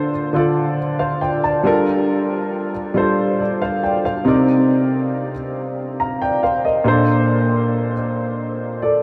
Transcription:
Already playing: D3 D4 F4 A4 C5
0.33 D3 D4 F4 A4 D5
0.99 C5 F5
1.21 D5 G5
1.44 D5 A5
1.63 G3 D4 F4 A4 A#4
2.94 G3 D4 F4 A4 C5
3.40 A4 D5
3.62 C5 F5
3.83 D5 G5
4.05 C5 F5
4.25 C3 C4 D#4 A#4 D5
6.00 F5 A#5
6.22 D5 G5
6.43 C5 F5
6.65 A#4 D#5
6.84 A#2 A#3 D4 A4 C5
8.82 A4 D5

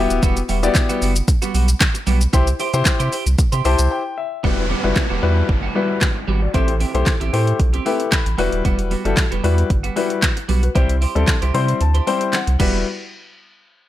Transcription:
Already playing: G3 B3 E4 F#4 G4 E5
0.10 D#1, muted clean electric guitar stroke, closed hi-hat, shaker
0.23 E1 G3 B3 F#4, kick, closed hi-hat, shaker
0.37 muted clean electric guitar stroke, closed hi-hat, shaker
0.49 E1 G3 B3 F#4 G4 E5, open hi-hat, shaker
0.63 G3 B3 E4 F#4 G4 D5, closed hi-hat, shaker
0.75 kick, snare, clap, closed hi-hat, shaker
0.89 G3 B3 F#4, closed hi-hat, shaker
1.02 F#1 G3 B3 F#4, open hi-hat, shaker
1.16 muted clean electric guitar stroke, closed hi-hat, shaker
1.28 muted clean electric guitar stroke, kick, closed hi-hat, shaker
1.42 G3 B3 F#4, closed hi-hat, shaker
1.54 B1 G3 B3 F#4, open hi-hat, shaker
1.68 muted clean electric guitar stroke, closed hi-hat, shaker
1.80 muted clean electric guitar stroke, kick, snare, clap, closed hi-hat, shaker
1.94 muted clean electric guitar stroke, closed hi-hat, shaker
2.07 B1 G3 B3 F#4, open hi-hat, shaker
2.21 muted clean electric guitar stroke, closed hi-hat, shaker
2.33 C2 E4 G4 C5, kick, closed hi-hat, shaker
2.47 muted clean electric guitar stroke, closed hi-hat, shaker
2.59 E4 G4 C5, open hi-hat, shaker
2.73 C3 E4 G4 C5, closed hi-hat, shaker
2.85 C3, muted clean electric guitar stroke, kick, snare, clap, closed hi-hat, shaker
3.00 C3 E4 G4 C5, closed hi-hat, shaker
3.12 E4 G4 C5, open hi-hat, shaker
3.26 C2, muted clean electric guitar stroke, closed hi-hat, shaker
3.38 muted clean electric guitar stroke, kick, closed hi-hat, shaker
3.52 C3 E4 G4 C5, closed hi-hat, shaker
3.64 C2 E4 G4 C5 A5, open hi-hat, shaker
3.79 C2, muted clean electric guitar stroke, closed hi-hat, shaker
3.91 G5
4.18 E5
4.43 E1 G3 B3 E4 F#4 B4, kick, downlifter
4.58 muted clean electric guitar stroke
4.70 G3 B3 F#4
4.84 F#1 G3 B3 E4 F#4 B4
4.96 muted clean electric guitar stroke, kick, snare, clap
5.10 E1 G3 B3 F#4
5.22 E2 G3 B3 E4 F#4 B4
5.36 muted clean electric guitar stroke
5.49 G1, muted clean electric guitar stroke, kick
5.63 G3 B3 F#4
5.75 G3 B3 E4 F#4 B4
5.89 muted clean electric guitar stroke
6.01 muted clean electric guitar stroke, kick, snare, clap
6.15 muted clean electric guitar stroke
6.28 G#1 G3 B3 F#4
6.42 F#4 D5, muted clean electric guitar stroke
6.54 A1 A3 C4 E4 G4 C5, kick, closed hi-hat
6.68 muted clean electric guitar stroke, closed hi-hat
6.80 C4 E4 G4, open hi-hat
6.94 B1 A3 C4 E4 G4 C5, closed hi-hat
7.06 kick, snare, clap, closed hi-hat
7.20 A1 C4 E4 G4, closed hi-hat
7.33 A2 A3 C4 E4 G4 C5, open hi-hat
7.47 muted clean electric guitar stroke, closed hi-hat
7.59 B1, muted clean electric guitar stroke, kick, closed hi-hat
7.73 C4 E4 G4, closed hi-hat
7.85 A3 C4 E4 G4 B4 E5, open hi-hat
7.99 muted clean electric guitar stroke, closed hi-hat
8.12 B5, muted clean electric guitar stroke, kick, snare, clap, closed hi-hat
8.25 A1, muted clean electric guitar stroke, closed hi-hat
8.38 E1 G3 B3 E4 F#4 B4, open hi-hat
8.52 D#1, muted clean electric guitar stroke, closed hi-hat
8.64 E1 G3 B3 F#4, kick, closed hi-hat
8.78 muted clean electric guitar stroke, closed hi-hat
8.91 G3 B3 F#4, open hi-hat
9.04 F#1 G3 B3 E4 F#4 A4, closed hi-hat
9.17 muted clean electric guitar stroke, kick, snare, clap, closed hi-hat
9.31 E1 G3 B3 F#4, closed hi-hat
9.43 E2 G3 B3 E4 F#4 B4, open hi-hat
9.57 muted clean electric guitar stroke, closed hi-hat
9.70 G1, muted clean electric guitar stroke, kick, closed hi-hat
9.83 G3 B3 F#4, closed hi-hat
9.96 G3 B3 E4 F#4 B4, open hi-hat
10.10 muted clean electric guitar stroke, closed hi-hat
10.22 muted clean electric guitar stroke, kick, snare, clap, closed hi-hat
10.36 muted clean electric guitar stroke, closed hi-hat
10.49 B1 G3 B3 F#4, open hi-hat
10.63 F#4 B4, muted clean electric guitar stroke, closed hi-hat
10.75 C2 G3 C4 E4 G4 C5, kick, closed hi-hat
10.89 muted clean electric guitar stroke, closed hi-hat
11.01 E4 G4 C5, open hi-hat
11.15 D2 G3 C4 E4 G4 A4 C5, closed hi-hat
11.27 kick, snare, clap, closed hi-hat
11.42 C2 E4 G4 C5, closed hi-hat
11.54 C3 G3 C4 E4 G4 C5 C6, open hi-hat
11.68 muted clean electric guitar stroke, closed hi-hat
11.81 D2 A5, muted clean electric guitar stroke, closed hi-hat
11.94 E4 G4 C5, closed hi-hat
12.07 G3 C4 E4 G4 C5 G5, open hi-hat
12.21 muted clean electric guitar stroke, closed hi-hat
12.33 F#5, muted clean electric guitar stroke, snare, clap, closed hi-hat
12.47 C2, muted clean electric guitar stroke, closed hi-hat
12.59 E1 G3 B3 E4 F#4 B4, kick, crash

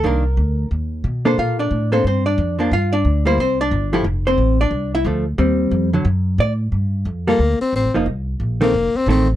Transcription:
0.04 C2 D#3 A#3 D4 A#4
0.37 D2
0.71 D#2
1.04 B2
1.25 A#3 D4 A4 C5
1.38 A#2 F4 F5
1.59 D4 D5
1.71 A2
1.92 A#3 C4 D4 A4 C5
2.04 G2 C4 C5
2.26 D4 D5
2.38 F2
2.59 F3 A#3 D4
2.71 G2 F4 F5
2.93 D4 D5
3.05 D2
3.25 G3 A#3 E4 C5
3.38 C2 C4 C5
3.61 D4 D5
3.71 G1
3.93 F3 A3 E4 G4
4.04 F1
4.27 C4 C5
4.38 A1
4.61 D4 D5
4.71 C2
4.95 E4 E5
5.05 D2 F3 A3
5.38 D#2 G3 C4
5.71 F2
5.93 D3 F#3
6.05 F#2
6.38 A2 D5
6.72 G2
7.05 F2
7.27 G3 A#3 F4 A4
7.39 D2
7.60 C4, muted upright bass stroke
7.73 A1 C4
7.84 G1
7.94 F1 F3 A#3 D#4
8.06 C2
8.40 A#1
8.61 D#3 A3 A#3 C4
8.74 F1
8.94 C4, muted upright bass stroke
9.06 A1 D#3 A3 C4
9.10 C4

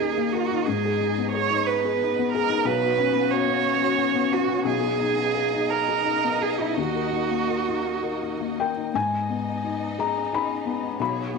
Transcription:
Already playing: D#2 A#3 D#4 G#4 A#4 D#5
0.00 D#4
0.18 A#3
0.33 F#4 A#4
0.51 D#4
0.66 G#2 B3 G#4
0.85 G#4
1.00 D#4
1.18 B3
1.32 G#4 C#5
1.50 D#4
1.66 B4
1.85 G#4
2.02 D#4
2.19 B3
2.33 G#4 A#4
2.50 D#4
2.65 B1 F#4 B4 C#5
2.82 F#4
2.98 C#4
3.15 B3
3.31 F#4 C#5
3.47 C#4
3.82 F#4
3.98 C#4
4.14 B3
4.32 F#4
4.48 C#4
4.65 B1 D#4 G#4 D#5
4.81 G#4
4.99 D#4
5.16 B3
5.35 G#4
5.54 D#4
5.70 A#4
5.89 G#4
6.05 D#4
6.24 B3
6.41 G#4
6.59 D#4 E4
6.77 D#2 A#3 F#4
6.95 A#4
7.11 D#4
7.31 A#3
7.50 A#4
7.68 D#4
8.03 A#4
8.23 D#4
8.40 A#3
8.60 A#4 G5
8.77 D#4
8.94 G#2 B3 D#4 D#5 G#5
9.29 B3
9.64 D#4
9.98 D#4 G#4 A#5
10.33 D#4 B5
10.65 B3
10.99 B1 F#4 G#4 C#5 B5
11.33 B3

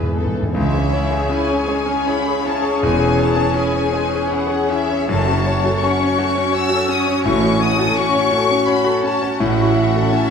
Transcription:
Already playing: E2 B2 E3 B3 E4 G#4 B4 E5
0.03 E2
0.10 E2
0.15 E2 B3 A4
0.26 E2
0.34 E2
0.43 E2
0.54 C#2 G#3 C#4 G#4 C#5 E5
0.58 C#4 G#4
0.74 C#4 G#4
0.93 E4 C#5
1.11 G#4
1.29 C#4 E4 G#5
1.47 C#5
1.52 C#4
1.68 G#3 G#4
1.86 C#4
2.07 E4 C#5 B5
2.25 G#4
2.45 C#4 E4 A5
2.62 C#4 C#5
2.82 E1 E2 G#3 G#5
3.00 C#4 G#4
3.17 E4 C#5 A5
3.36 G#4
3.54 C#4 E4 G#5
3.72 C#4 C#5
3.94 G#3 G#4
4.09 C#4
4.28 C#5
4.32 E4 F#5
4.47 G#4
4.52 G#4
4.70 C#4 E4 E5
4.90 C#4 C#5
5.09 F#1 F#2 A3 C#4 F#4 C#5 A5
5.28 C#4 F#4
5.47 F#4 C#5
5.64 F#4 A4
5.83 C#4 F#4 C#6
6.00 C#4 C#5
6.18 A3 F#4
6.36 C#4
6.52 F#4 C#5 E6
6.69 F#4 A4
6.89 C#4 F#4 D#6
7.07 C#4 C#5
7.25 A1 A2 A3 C#6
7.42 C#4 F#4
7.60 F#4 C#5 D#6
7.79 F#4 A4
7.97 C#4 F#4 C#6
8.15 C#4 C#5
8.31 A3 F#4
8.51 C#4
8.68 F#4 C#5 B5
8.84 F#4 A4
9.03 C#4 F#4 A5
9.23 C#4 C#5
9.40 A1 A2 C#4 E4 F#4 E5 F#5
9.60 E4 F#4
9.76 F#4 E5
9.96 F#4 A4
10.12 C#4 F#4 A5

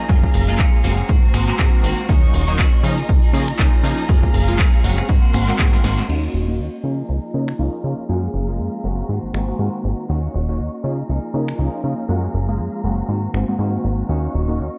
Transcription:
Already playing: A#5
0.00 A#3
0.08 F#2 F3 F#3 G#3 A#3 C#4 F4 G#4 F5, kick, closed hi-hat
0.23 kick, tambourine
0.34 F#1, open hi-hat, tambourine
0.47 G#3 A#3 C#4 F4 G#4, closed hi-hat, tambourine
0.58 F#2 F3 A#3 C#4 G#4, kick, clap, closed hi-hat
0.72 A#3 C#4 G#4, tambourine
0.83 F#1 F3 G#3 A#3 C4 C#4 F#4 G#4, open hi-hat, tambourine
0.97 A#3 C#4 G#4, closed hi-hat, tambourine
1.08 G#2 D#3 A#3 C4 F#4 C5 A#5, kick, closed hi-hat, tambourine
1.22 G#1 A#3 C4 F#4, tambourine
1.34 G#1 G#3 A#3 C4 F#4, finger snap, open hi-hat, tambourine
1.48 G#3 A#3 C4 F#4, clap, closed hi-hat
1.58 G#2 D#3 G#3 A#3 C4 F#4, kick, clap, closed hi-hat, tambourine
1.73 tambourine
1.83 G#1 D#3 A#3 C4 F#4, open hi-hat, tambourine
1.97 A#3 C4 F#4, closed hi-hat, tambourine
2.08 D#2 F#3 A#3 C#4 D#4 F#4 D#5 C#6, kick, closed hi-hat, tambourine
2.23 tambourine
2.34 D#1, open hi-hat, tambourine
2.47 F#3 A#3 C#4 D#4 F#4, closed hi-hat, tambourine
2.58 D#2 A#3 C#4 F#4, kick, clap, closed hi-hat, tambourine
2.73 tambourine
2.83 C#3 F3 A#3 C#4 D#4 F4 G#4 A#5, open hi-hat, tambourine
2.97 A#3 D#4 G#4, closed hi-hat, tambourine
3.09 C#2, kick, closed hi-hat, tambourine
3.22 A#3 D#4 G#4, tambourine
3.33 C#3 F3 A#3 C#4 G#4, open hi-hat, tambourine
3.48 finger snap, closed hi-hat, tambourine
3.58 C#2 F3 A#3 C#4 D#4 G#4, kick, clap, closed hi-hat, tambourine
3.73 tambourine
3.83 C#3 F3 A#3 C#4 D#4 G#4, open hi-hat, tambourine
3.97 A#3 D#4 G#4, closed hi-hat, tambourine
4.08 F#2 F3 F#3 G#3 A#3 C#4 F4 G#4 F5, kick, closed hi-hat, tambourine
4.23 kick, tambourine
4.34 F#1, open hi-hat, tambourine
4.47 G#3 A#3 C#4 F4 G#4, closed hi-hat, tambourine
4.59 F#2 F3 A#3 C#4 G#4, kick, clap, closed hi-hat
4.72 A#3 C#4 G#4, tambourine
4.83 F#1 F3 G#3 A#3 C4 C#4 F#4 G#4, open hi-hat, tambourine
4.97 A#3 C#4 G#4, finger snap, closed hi-hat, tambourine
5.08 G#2 D#3 A#3 C4 F#4 A#4 F#5 C6, kick, closed hi-hat, tambourine
5.22 G#1 A#3 C4 F#4, tambourine
5.33 G#1 G#3 A#3 C4 F#4, finger snap, open hi-hat, tambourine
5.48 G#3 A#3 C4 F#4, clap, closed hi-hat, tambourine
5.58 G#2 D#3 A#3 C4 F#4, kick, clap, closed hi-hat, tambourine
5.73 snare, tambourine
5.83 G#1 D#3 A#3 C4 F#4, snare, open hi-hat, tambourine
5.97 A#3 C4 F#4, snare, closed hi-hat, tambourine
6.08 D#2 A#3 C#4 D#4 F#4 D#5 C#6, crash
6.34 D#1
6.48 A#3 C#4 D#4 F#4
6.59 D#2
6.83 C#3 F3 A#3 C#4 D#4 F4 G#4 A#5
7.09 C#2
7.34 C#3 A#3 C#4 D#4 A#4, tambourine
7.48 finger snap
7.58 C#2 F3 A#3 C#4 D#4 F4 G#4
7.84 C#3 A#3 C#4 D#4 F4, tambourine
8.08 F#2 F3 G#3 A#3 C#4 F4 F#4 G#4 F5 A#5, tambourine
8.34 F#1, tambourine
8.48 G#3 A#3 F4, tambourine
8.59 F#2, tambourine
8.83 F#1 G#3 A#3 C4 C#4 F#4 G#4, tambourine
8.98 tambourine
9.08 G#2 D#3 A#3 C4 F#4 C5, tambourine
9.23 G#1
9.34 G#1 G#3 A#3 C4 F#4, finger snap
9.48 G#3 A#3 C4 F#4
9.58 G#2 D#3 G#3 A#3 C4 F#4
9.84 G#1, tambourine
9.99 tambourine
10.08 D#2 A#3 C#4 D#4 F#4 D#5 C#6, tambourine
10.34 D#1, tambourine
10.48 A#3 C#4 D#4 F#4, tambourine
10.59 D#2, tambourine
10.73 tambourine
10.83 C#3 A#3 C#4 D#4 F4 G#4 A#5, tambourine
10.97 tambourine
11.08 C#2 F3 A#3 D#4 G#4, tambourine
11.24 tambourine
11.34 C#3 A#3 C#4 D#4 A#4, tambourine
11.48 finger snap
11.58 C#2 F3 A#3 C#4 D#4 F4 G#4
11.84 C#3 A#3 C#4 D#4 F4, tambourine
11.98 tambourine
12.08 F#2 F3 G#3 A#3 C#4 F4 F#4 G#4 F5, tambourine
12.24 tambourine
12.34 F#1, tambourine
12.48 G#3 A#3 F4, tambourine
12.59 F#2, tambourine
12.74 tambourine
12.83 F#1 G#3 A#3 C4 C#4 F#4 G#4, tambourine
12.99 tambourine
13.08 G#2 D#3 A#3 C4 F#4 C5, tambourine
13.23 tambourine
13.34 G#1 G#3 A#3 C4 F#4, finger snap
13.48 G#2 G#3 A#3 C4 F#4
13.58 G#2 D#3 G#3 A#3 C4 F#4, tambourine
13.74 tambourine
13.84 G#1, tambourine
13.99 tambourine
14.08 D#2 A#3 C#4 D#4 F#4 D#5 C#6, tambourine
14.24 tambourine
14.34 D#1, tambourine
14.48 A#3 C#4 D#4 F#4, tambourine
14.59 D#2, tambourine
14.74 tambourine

